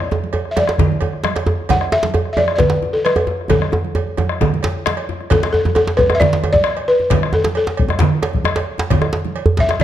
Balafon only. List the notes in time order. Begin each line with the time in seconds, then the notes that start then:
Already playing: D5
0.51 E5
0.58 D5
1.70 F#5
1.93 E5
2.33 E5
2.37 D5
2.56 B4 D5
2.93 A4
3.05 B4
3.50 A4
5.31 A4
5.53 A4
5.75 A4
5.97 B4
6.15 E5
6.20 D5
6.53 D5
6.88 B4
7.34 A4
7.57 A4
9.60 E5